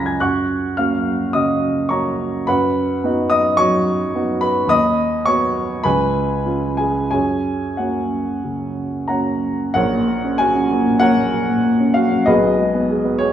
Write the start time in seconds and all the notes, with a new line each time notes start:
Already playing: C#2 C#4 F4 F5 F#5 G#5 A#5 B5 F6 F#6 G#6 A#6 B6
0.06 G#5 G#6
0.20 F#2 F#5 C#6 F#6
0.77 A#3 C#4 F#4 F5 F6
1.33 C#3 D#5 D#6
1.89 A#3 C#4 F#4 C#5 A#5 C#6
2.47 F#2 B4 F#5 B5
3.04 B3 D#4 F#4
3.30 D#5 D#6
3.57 F#3 C#5 C#6
4.15 B3 D#4 F#4
4.41 B4 B5
4.67 D#2 D#5 B5 D#6
5.26 B3 F#4 C#5 C#6
5.84 C#2 B4 G#5 B5
6.46 C#4 F4
6.77 G#4 G#5
7.11 F#2 G#4 C#5 G#5
7.77 A#3 C#4 F#4 C#5 F#5
8.44 C#3
9.08 A#3 C#4 F#4 C#5 F#5 A#5
9.74 A#1 A#4 C#5 F#5
9.92 A#2
10.08 A#3
10.24 C#4
10.38 F#4 G#5
10.55 C#4
10.70 A#3
10.85 A#2
11.00 A#3 A#4 C#5 F#5
11.17 A#2
11.32 A#3
11.49 A#2
11.64 A#3
11.80 C#4
11.94 F#4 F5
12.11 C#4
12.26 B1 G#4 B4 D#5
12.44 B2
12.59 G#3
12.75 B3
12.90 G#4
13.05 B3
13.19 G#4 C#5